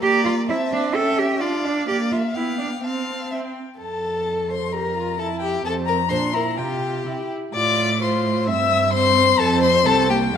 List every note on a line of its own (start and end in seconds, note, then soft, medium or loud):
0.02 0.51 A#3 medium
0.02 0.24 G4 loud
0.02 0.45 D5 medium
0.02 0.45 A#5 medium
0.25 0.33 F4 medium
0.48 0.97 C4 medium
0.48 0.57 E4 medium
0.48 0.94 E5 medium
0.48 0.95 A5 medium
0.73 0.96 D4 loud
0.94 1.42 C#4 medium
0.94 1.20 A4 loud
0.94 1.42 E5 medium
0.94 1.42 G5 medium
1.19 1.43 G4 medium
1.41 1.87 D4 medium
1.41 1.66 F4 medium
1.41 1.87 D5 medium
1.41 1.87 F5 medium
1.65 1.87 D4 medium
1.88 2.32 A#3 medium
1.88 1.96 G4 loud
1.88 2.14 D5 medium
1.88 2.37 F5 medium
2.12 2.20 F4 medium
2.12 2.36 E5 medium
2.34 2.82 B3 medium
2.34 2.58 E4 medium
2.34 2.83 F5 medium
2.34 2.86 G5 medium
2.59 2.67 D4 medium
2.83 3.54 C4 medium
2.83 3.31 C4 medium
2.83 3.31 F5 medium
2.83 3.36 A5 medium
3.31 3.40 C4 medium
3.31 3.39 E5 soft
3.31 3.61 G5 soft
3.79 5.61 F2 medium
3.79 4.51 A4 medium
3.79 4.75 A4 soft
3.79 4.47 A5 medium
4.50 4.73 C5 medium
4.50 4.74 C6 medium
4.73 4.96 G4 soft
4.73 5.18 A#4 medium
4.73 5.21 A#5 medium
4.97 5.19 F4 soft
5.19 5.64 E4 medium
5.19 5.27 A4 medium
5.19 5.40 A5 medium
5.41 5.65 G4 medium
5.41 5.64 G5 medium
5.64 6.12 F2 medium
5.64 6.09 C4 medium
5.64 5.74 A4 medium
5.64 5.73 A5 loud
5.86 5.96 A#4 medium
5.86 6.10 A#5 loud
6.09 6.60 A#2 medium
6.09 6.35 D4 medium
6.09 6.18 C5 medium
6.09 6.35 C6 loud
6.33 6.59 E4 medium
6.33 6.43 A#4 medium
6.33 6.59 A#5 medium
6.58 7.05 C3 medium
6.58 7.08 F4 medium
6.58 7.29 G4 medium
6.58 7.30 G5 medium
7.05 7.13 C3 medium
7.05 7.34 E4 medium
7.54 8.49 A2 medium
7.54 7.98 F4 medium
7.54 7.99 D5 medium
7.54 8.04 D6 loud
8.01 8.50 F4 medium
8.01 8.48 C5 medium
8.01 8.48 C6 medium
8.47 9.38 G2 medium
8.47 8.94 C4 medium
8.47 8.93 E5 medium
8.47 8.93 E6 loud
8.93 9.39 C4 medium
8.93 9.41 C5 loud
8.93 9.41 C6 loud
9.38 9.86 F2 loud
9.38 9.83 C4 medium
9.38 9.61 A4 loud
9.38 9.62 A5 loud
9.61 9.87 C5 loud
9.61 9.88 C6 loud
9.85 10.35 C2 medium
9.85 10.11 C4 medium
9.85 10.10 A4 loud
9.85 10.11 A5 loud
10.10 10.34 A#3 medium
10.10 10.18 G4 medium
10.10 10.37 G5 loud
10.33 10.37 F2 medium
10.33 10.37 A3 medium